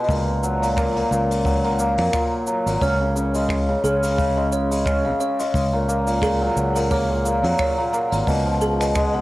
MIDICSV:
0, 0, Header, 1, 5, 480
1, 0, Start_track
1, 0, Tempo, 681818
1, 64, Time_signature, 4, 2, 24, 8
1, 6485, End_track
2, 0, Start_track
2, 0, Title_t, "Music box"
2, 0, Program_c, 0, 10
2, 1986, Note_on_c, 0, 73, 103
2, 2134, Note_off_c, 0, 73, 0
2, 2702, Note_on_c, 0, 68, 74
2, 2932, Note_off_c, 0, 68, 0
2, 3185, Note_on_c, 0, 73, 94
2, 3414, Note_off_c, 0, 73, 0
2, 3664, Note_on_c, 0, 73, 96
2, 3813, Note_off_c, 0, 73, 0
2, 4381, Note_on_c, 0, 68, 82
2, 4612, Note_off_c, 0, 68, 0
2, 4865, Note_on_c, 0, 73, 98
2, 5094, Note_off_c, 0, 73, 0
2, 5343, Note_on_c, 0, 73, 96
2, 5493, Note_off_c, 0, 73, 0
2, 6065, Note_on_c, 0, 68, 81
2, 6294, Note_off_c, 0, 68, 0
2, 6485, End_track
3, 0, Start_track
3, 0, Title_t, "Hammered dulcimer"
3, 0, Program_c, 1, 15
3, 0, Note_on_c, 1, 47, 72
3, 0, Note_on_c, 1, 56, 74
3, 63, Note_on_c, 1, 46, 78
3, 99, Note_off_c, 1, 47, 0
3, 99, Note_off_c, 1, 56, 0
3, 305, Note_on_c, 1, 54, 72
3, 429, Note_off_c, 1, 46, 0
3, 438, Note_on_c, 1, 46, 77
3, 543, Note_on_c, 1, 58, 77
3, 668, Note_off_c, 1, 46, 0
3, 676, Note_on_c, 1, 46, 75
3, 772, Note_off_c, 1, 46, 0
3, 780, Note_on_c, 1, 46, 82
3, 1014, Note_off_c, 1, 54, 0
3, 1022, Note_on_c, 1, 54, 82
3, 1151, Note_off_c, 1, 46, 0
3, 1160, Note_on_c, 1, 46, 73
3, 1260, Note_off_c, 1, 58, 0
3, 1263, Note_on_c, 1, 58, 73
3, 1387, Note_off_c, 1, 46, 0
3, 1396, Note_on_c, 1, 46, 75
3, 1493, Note_off_c, 1, 46, 0
3, 1502, Note_on_c, 1, 46, 79
3, 1732, Note_off_c, 1, 54, 0
3, 1741, Note_on_c, 1, 54, 75
3, 1869, Note_off_c, 1, 46, 0
3, 1877, Note_on_c, 1, 46, 75
3, 1983, Note_on_c, 1, 61, 88
3, 2019, Note_off_c, 1, 46, 0
3, 2019, Note_off_c, 1, 54, 0
3, 2118, Note_on_c, 1, 49, 71
3, 2213, Note_off_c, 1, 49, 0
3, 2222, Note_on_c, 1, 49, 75
3, 2357, Note_on_c, 1, 56, 74
3, 2588, Note_off_c, 1, 49, 0
3, 2596, Note_on_c, 1, 49, 75
3, 2701, Note_off_c, 1, 61, 0
3, 2704, Note_on_c, 1, 61, 78
3, 2830, Note_off_c, 1, 49, 0
3, 2838, Note_on_c, 1, 49, 69
3, 2934, Note_off_c, 1, 49, 0
3, 2943, Note_on_c, 1, 49, 86
3, 3069, Note_off_c, 1, 56, 0
3, 3077, Note_on_c, 1, 56, 76
3, 3309, Note_off_c, 1, 49, 0
3, 3317, Note_on_c, 1, 49, 78
3, 3419, Note_off_c, 1, 61, 0
3, 3421, Note_on_c, 1, 61, 76
3, 3546, Note_off_c, 1, 49, 0
3, 3554, Note_on_c, 1, 49, 73
3, 3654, Note_off_c, 1, 49, 0
3, 3662, Note_on_c, 1, 49, 78
3, 3789, Note_off_c, 1, 56, 0
3, 3797, Note_on_c, 1, 56, 80
3, 3939, Note_off_c, 1, 49, 0
3, 3939, Note_off_c, 1, 56, 0
3, 4036, Note_on_c, 1, 46, 76
3, 4138, Note_off_c, 1, 58, 0
3, 4141, Note_on_c, 1, 58, 74
3, 4268, Note_off_c, 1, 46, 0
3, 4276, Note_on_c, 1, 46, 77
3, 4371, Note_off_c, 1, 46, 0
3, 4380, Note_on_c, 1, 46, 81
3, 4515, Note_on_c, 1, 54, 77
3, 4748, Note_off_c, 1, 46, 0
3, 4756, Note_on_c, 1, 46, 79
3, 4860, Note_off_c, 1, 58, 0
3, 4862, Note_on_c, 1, 58, 85
3, 4989, Note_off_c, 1, 46, 0
3, 4997, Note_on_c, 1, 46, 76
3, 5094, Note_off_c, 1, 46, 0
3, 5103, Note_on_c, 1, 46, 74
3, 5227, Note_off_c, 1, 54, 0
3, 5236, Note_on_c, 1, 54, 78
3, 5468, Note_off_c, 1, 46, 0
3, 5477, Note_on_c, 1, 46, 80
3, 5579, Note_off_c, 1, 58, 0
3, 5582, Note_on_c, 1, 58, 79
3, 5709, Note_off_c, 1, 46, 0
3, 5717, Note_on_c, 1, 46, 74
3, 5821, Note_on_c, 1, 47, 80
3, 5859, Note_off_c, 1, 46, 0
3, 5859, Note_off_c, 1, 54, 0
3, 5864, Note_off_c, 1, 58, 0
3, 5955, Note_on_c, 1, 53, 71
3, 6141, Note_off_c, 1, 61, 0
3, 6189, Note_off_c, 1, 47, 0
3, 6197, Note_on_c, 1, 47, 75
3, 6219, Note_off_c, 1, 53, 0
3, 6301, Note_on_c, 1, 56, 86
3, 6426, Note_off_c, 1, 47, 0
3, 6434, Note_on_c, 1, 47, 81
3, 6485, Note_off_c, 1, 47, 0
3, 6485, Note_off_c, 1, 56, 0
3, 6485, End_track
4, 0, Start_track
4, 0, Title_t, "Fingered electric bass"
4, 0, Program_c, 2, 33
4, 60, Note_on_c, 2, 37, 97
4, 720, Note_off_c, 2, 37, 0
4, 781, Note_on_c, 2, 37, 91
4, 1390, Note_off_c, 2, 37, 0
4, 1395, Note_on_c, 2, 41, 98
4, 1463, Note_off_c, 2, 41, 0
4, 1874, Note_on_c, 2, 32, 95
4, 1943, Note_off_c, 2, 32, 0
4, 1981, Note_on_c, 2, 37, 90
4, 2640, Note_off_c, 2, 37, 0
4, 2701, Note_on_c, 2, 37, 89
4, 3600, Note_off_c, 2, 37, 0
4, 3900, Note_on_c, 2, 37, 92
4, 4560, Note_off_c, 2, 37, 0
4, 4620, Note_on_c, 2, 37, 92
4, 5230, Note_off_c, 2, 37, 0
4, 5234, Note_on_c, 2, 41, 101
4, 5303, Note_off_c, 2, 41, 0
4, 5717, Note_on_c, 2, 32, 91
4, 5785, Note_off_c, 2, 32, 0
4, 5823, Note_on_c, 2, 37, 101
4, 6482, Note_off_c, 2, 37, 0
4, 6485, End_track
5, 0, Start_track
5, 0, Title_t, "Drums"
5, 26, Note_on_c, 9, 46, 33
5, 61, Note_on_c, 9, 36, 102
5, 69, Note_off_c, 9, 46, 0
5, 69, Note_on_c, 9, 46, 61
5, 70, Note_on_c, 9, 69, 49
5, 105, Note_off_c, 9, 46, 0
5, 105, Note_on_c, 9, 46, 50
5, 131, Note_off_c, 9, 36, 0
5, 141, Note_off_c, 9, 69, 0
5, 175, Note_off_c, 9, 46, 0
5, 307, Note_on_c, 9, 69, 75
5, 377, Note_off_c, 9, 69, 0
5, 443, Note_on_c, 9, 46, 56
5, 446, Note_on_c, 9, 69, 55
5, 513, Note_off_c, 9, 46, 0
5, 516, Note_off_c, 9, 69, 0
5, 541, Note_on_c, 9, 36, 98
5, 543, Note_on_c, 9, 46, 66
5, 546, Note_on_c, 9, 69, 48
5, 547, Note_on_c, 9, 26, 91
5, 612, Note_off_c, 9, 36, 0
5, 614, Note_off_c, 9, 46, 0
5, 616, Note_off_c, 9, 69, 0
5, 617, Note_off_c, 9, 26, 0
5, 680, Note_on_c, 9, 46, 45
5, 750, Note_off_c, 9, 46, 0
5, 792, Note_on_c, 9, 69, 75
5, 862, Note_off_c, 9, 69, 0
5, 921, Note_on_c, 9, 46, 61
5, 928, Note_on_c, 9, 69, 61
5, 992, Note_off_c, 9, 46, 0
5, 999, Note_off_c, 9, 69, 0
5, 1020, Note_on_c, 9, 36, 100
5, 1022, Note_on_c, 9, 46, 64
5, 1027, Note_on_c, 9, 69, 53
5, 1090, Note_off_c, 9, 36, 0
5, 1092, Note_off_c, 9, 46, 0
5, 1097, Note_off_c, 9, 69, 0
5, 1156, Note_on_c, 9, 46, 44
5, 1226, Note_off_c, 9, 46, 0
5, 1262, Note_on_c, 9, 69, 86
5, 1332, Note_off_c, 9, 69, 0
5, 1392, Note_on_c, 9, 46, 59
5, 1399, Note_on_c, 9, 26, 26
5, 1462, Note_off_c, 9, 46, 0
5, 1469, Note_off_c, 9, 26, 0
5, 1501, Note_on_c, 9, 26, 100
5, 1503, Note_on_c, 9, 36, 102
5, 1506, Note_on_c, 9, 69, 58
5, 1508, Note_on_c, 9, 46, 65
5, 1572, Note_off_c, 9, 26, 0
5, 1574, Note_off_c, 9, 36, 0
5, 1576, Note_off_c, 9, 69, 0
5, 1578, Note_off_c, 9, 46, 0
5, 1738, Note_on_c, 9, 69, 94
5, 1808, Note_off_c, 9, 69, 0
5, 1880, Note_on_c, 9, 46, 58
5, 1880, Note_on_c, 9, 69, 54
5, 1950, Note_off_c, 9, 46, 0
5, 1951, Note_off_c, 9, 69, 0
5, 1981, Note_on_c, 9, 36, 99
5, 1984, Note_on_c, 9, 69, 44
5, 1988, Note_on_c, 9, 46, 63
5, 2052, Note_off_c, 9, 36, 0
5, 2055, Note_off_c, 9, 69, 0
5, 2058, Note_off_c, 9, 46, 0
5, 2228, Note_on_c, 9, 69, 87
5, 2299, Note_off_c, 9, 69, 0
5, 2355, Note_on_c, 9, 69, 53
5, 2359, Note_on_c, 9, 46, 60
5, 2426, Note_off_c, 9, 69, 0
5, 2430, Note_off_c, 9, 46, 0
5, 2457, Note_on_c, 9, 36, 96
5, 2463, Note_on_c, 9, 46, 57
5, 2463, Note_on_c, 9, 69, 40
5, 2465, Note_on_c, 9, 26, 89
5, 2527, Note_off_c, 9, 36, 0
5, 2533, Note_off_c, 9, 46, 0
5, 2533, Note_off_c, 9, 69, 0
5, 2535, Note_off_c, 9, 26, 0
5, 2708, Note_on_c, 9, 69, 87
5, 2778, Note_off_c, 9, 69, 0
5, 2839, Note_on_c, 9, 69, 67
5, 2843, Note_on_c, 9, 46, 65
5, 2909, Note_off_c, 9, 69, 0
5, 2914, Note_off_c, 9, 46, 0
5, 2946, Note_on_c, 9, 36, 96
5, 2948, Note_on_c, 9, 46, 65
5, 2948, Note_on_c, 9, 69, 51
5, 3016, Note_off_c, 9, 36, 0
5, 3018, Note_off_c, 9, 46, 0
5, 3018, Note_off_c, 9, 69, 0
5, 3185, Note_on_c, 9, 69, 78
5, 3255, Note_off_c, 9, 69, 0
5, 3321, Note_on_c, 9, 69, 58
5, 3323, Note_on_c, 9, 46, 63
5, 3391, Note_off_c, 9, 69, 0
5, 3393, Note_off_c, 9, 46, 0
5, 3419, Note_on_c, 9, 36, 89
5, 3424, Note_on_c, 9, 69, 52
5, 3429, Note_on_c, 9, 26, 92
5, 3490, Note_off_c, 9, 36, 0
5, 3495, Note_off_c, 9, 69, 0
5, 3500, Note_off_c, 9, 26, 0
5, 3665, Note_on_c, 9, 69, 87
5, 3735, Note_off_c, 9, 69, 0
5, 3800, Note_on_c, 9, 69, 61
5, 3804, Note_on_c, 9, 46, 54
5, 3870, Note_off_c, 9, 69, 0
5, 3874, Note_off_c, 9, 46, 0
5, 3901, Note_on_c, 9, 36, 88
5, 3906, Note_on_c, 9, 46, 72
5, 3909, Note_on_c, 9, 69, 54
5, 3971, Note_off_c, 9, 36, 0
5, 3977, Note_off_c, 9, 46, 0
5, 3980, Note_off_c, 9, 69, 0
5, 4150, Note_on_c, 9, 69, 86
5, 4220, Note_off_c, 9, 69, 0
5, 4275, Note_on_c, 9, 69, 54
5, 4283, Note_on_c, 9, 46, 51
5, 4346, Note_off_c, 9, 69, 0
5, 4353, Note_off_c, 9, 46, 0
5, 4378, Note_on_c, 9, 36, 89
5, 4385, Note_on_c, 9, 26, 81
5, 4388, Note_on_c, 9, 46, 63
5, 4388, Note_on_c, 9, 69, 47
5, 4448, Note_off_c, 9, 36, 0
5, 4455, Note_off_c, 9, 26, 0
5, 4458, Note_off_c, 9, 46, 0
5, 4459, Note_off_c, 9, 69, 0
5, 4626, Note_on_c, 9, 69, 83
5, 4696, Note_off_c, 9, 69, 0
5, 4758, Note_on_c, 9, 46, 70
5, 4758, Note_on_c, 9, 69, 62
5, 4828, Note_off_c, 9, 46, 0
5, 4829, Note_off_c, 9, 69, 0
5, 4864, Note_on_c, 9, 69, 53
5, 4865, Note_on_c, 9, 36, 94
5, 4865, Note_on_c, 9, 46, 72
5, 4935, Note_off_c, 9, 36, 0
5, 4935, Note_off_c, 9, 46, 0
5, 4935, Note_off_c, 9, 69, 0
5, 5109, Note_on_c, 9, 69, 80
5, 5179, Note_off_c, 9, 69, 0
5, 5238, Note_on_c, 9, 46, 65
5, 5309, Note_off_c, 9, 46, 0
5, 5340, Note_on_c, 9, 69, 46
5, 5344, Note_on_c, 9, 26, 100
5, 5344, Note_on_c, 9, 36, 98
5, 5345, Note_on_c, 9, 46, 66
5, 5410, Note_off_c, 9, 69, 0
5, 5415, Note_off_c, 9, 26, 0
5, 5415, Note_off_c, 9, 36, 0
5, 5416, Note_off_c, 9, 46, 0
5, 5588, Note_on_c, 9, 69, 78
5, 5659, Note_off_c, 9, 69, 0
5, 5716, Note_on_c, 9, 46, 51
5, 5723, Note_on_c, 9, 69, 49
5, 5787, Note_off_c, 9, 46, 0
5, 5793, Note_off_c, 9, 69, 0
5, 5824, Note_on_c, 9, 36, 94
5, 5827, Note_on_c, 9, 46, 75
5, 5827, Note_on_c, 9, 69, 46
5, 5894, Note_off_c, 9, 36, 0
5, 5897, Note_off_c, 9, 46, 0
5, 5897, Note_off_c, 9, 69, 0
5, 6065, Note_on_c, 9, 69, 72
5, 6135, Note_off_c, 9, 69, 0
5, 6198, Note_on_c, 9, 46, 64
5, 6202, Note_on_c, 9, 26, 31
5, 6206, Note_on_c, 9, 69, 52
5, 6269, Note_off_c, 9, 46, 0
5, 6272, Note_off_c, 9, 26, 0
5, 6276, Note_off_c, 9, 69, 0
5, 6303, Note_on_c, 9, 69, 48
5, 6304, Note_on_c, 9, 26, 96
5, 6304, Note_on_c, 9, 46, 68
5, 6305, Note_on_c, 9, 36, 92
5, 6374, Note_off_c, 9, 69, 0
5, 6375, Note_off_c, 9, 26, 0
5, 6375, Note_off_c, 9, 46, 0
5, 6376, Note_off_c, 9, 36, 0
5, 6485, End_track
0, 0, End_of_file